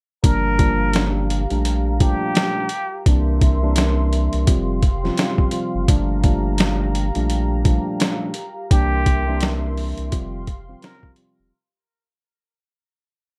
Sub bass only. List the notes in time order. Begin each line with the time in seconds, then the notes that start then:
0.24 G1
1.51 A#1
3.06 C2
4.34 C2
4.48 F1
5.75 F#1
5.89 G1
7.16 A#1
8.71 C2
9.98 C2
10.13 F1
11.40 E1